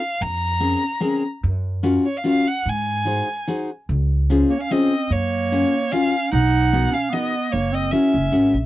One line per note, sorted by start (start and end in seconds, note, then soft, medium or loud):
0.00 0.24 F5 medium
0.21 0.74 F2 medium
0.21 1.24 A#5 loud
0.60 0.82 C4 medium
0.60 0.82 C#4 soft
0.60 0.82 G#4 medium
0.60 0.83 A#4 medium
1.00 1.22 C4 medium
1.00 1.22 C#4 soft
1.00 1.23 G#4 medium
1.00 1.23 A#4 medium
1.43 1.96 F#2 loud
1.83 2.04 C#4 medium
1.83 2.05 F4 medium
1.83 2.05 F#4 medium
1.83 2.05 A#4 medium
2.06 2.19 C#5 medium
2.17 2.26 F5 medium
2.24 2.45 C#4 medium
2.24 2.46 F4 soft
2.24 2.45 F#4 medium
2.24 2.46 A#4 medium
2.24 2.49 F5 medium
2.47 2.70 F#5 medium
2.66 3.19 G#2 medium
2.66 3.49 G#5 medium
3.05 3.27 D#4 medium
3.05 3.27 F#4 soft
3.05 3.27 G#4 soft
3.05 3.27 C5 medium
3.47 3.69 D#4 medium
3.47 3.69 F#4 medium
3.47 3.69 G#4 medium
3.47 3.69 C5 medium
3.89 4.42 C#2 loud
4.30 4.51 C#4 medium
4.30 4.51 F4 medium
4.30 4.51 G#4 medium
4.30 4.51 C5 medium
4.49 4.60 A#3 medium
4.49 4.61 C#5 medium
4.59 4.71 C#4 medium
4.59 4.73 F5 medium
4.70 5.12 C4 medium
4.70 4.92 C#4 medium
4.70 4.92 F4 soft
4.70 4.92 G#4 medium
4.70 4.92 C5 medium
4.70 5.14 D#5 medium
5.10 5.63 F#2 medium
5.10 5.93 A#3 medium
5.10 5.93 C#5 medium
5.52 5.73 C#4 medium
5.52 5.73 F4 medium
5.52 5.73 F#4 soft
5.52 5.73 A#4 medium
5.92 6.31 C#4 medium
5.92 6.13 C#4 medium
5.92 6.13 F4 medium
5.92 6.13 F#4 medium
5.92 6.13 A#4 medium
5.92 6.32 F5 loud
6.32 6.85 B1 loud
6.32 6.93 D#4 loud
6.32 6.95 F#5 loud
6.73 6.93 B3 medium
6.73 6.94 D#4 medium
6.73 6.93 F#4 soft
6.73 6.94 A#4 medium
6.91 7.12 C#4 medium
6.91 7.14 F5 medium
7.10 7.51 B3 medium
7.10 7.33 B3 medium
7.10 7.33 D#4 soft
7.10 7.33 F#4 medium
7.10 7.34 A#4 medium
7.10 7.53 D#5 medium
7.50 7.93 F#1 medium
7.50 7.74 A#3 medium
7.50 7.75 C#5 medium
7.72 7.95 C4 medium
7.72 7.93 D#5 medium
7.91 8.13 C#4 medium
7.91 8.54 C#4 medium
7.91 8.13 E4 soft
7.91 8.13 F#4 soft
7.91 8.13 A#4 medium
7.91 8.53 E5 medium
8.14 8.32 F#1 medium
8.32 8.52 G#1 medium
8.32 8.54 C#4 medium
8.32 8.54 E4 soft
8.32 8.54 F#4 medium
8.32 8.54 A#4 medium
8.53 8.66 A#1 medium